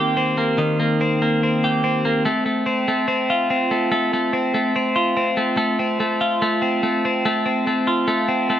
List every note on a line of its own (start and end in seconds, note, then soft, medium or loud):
0.00 0.57 D#3 medium
0.00 0.36 A#3 medium
0.00 0.17 C4 medium
0.00 1.63 G4 medium
0.17 1.00 C4 medium
0.38 0.78 A#3 medium
0.58 2.25 D#3 medium
0.80 1.21 A#3 medium
1.01 1.43 C4 medium
1.22 2.04 A#3 medium
1.43 1.84 C4 medium
1.64 2.30 G4 medium
1.84 2.66 C4 medium
2.05 2.25 A#3 medium
2.25 2.45 A3 medium
2.46 2.88 A3 medium
2.66 3.07 C4 medium
2.88 3.71 A3 medium
3.08 3.50 C4 medium
3.30 4.95 F4 medium
3.50 4.33 C4 medium
3.71 3.91 A3 medium
3.92 4.13 A3 medium
4.13 4.54 A3 medium
4.33 4.75 C4 medium
4.54 5.37 A3 medium
4.76 5.16 C4 medium
4.96 6.21 F4 medium
5.17 5.79 C4 medium
5.37 5.57 A3 medium
5.57 5.99 A3 medium
5.79 6.61 C4 medium
6.00 6.41 A3 medium
6.21 7.87 F4 medium
6.42 6.82 A3 medium
6.62 7.04 C4 medium
6.83 7.24 A3 medium
7.05 7.45 C4 medium
7.25 7.66 A3 medium
7.46 8.27 C4 medium
7.67 8.07 A3 medium
7.87 8.60 F4 medium
8.08 8.49 A3 medium
8.28 8.60 C4 medium
8.50 8.60 A3 medium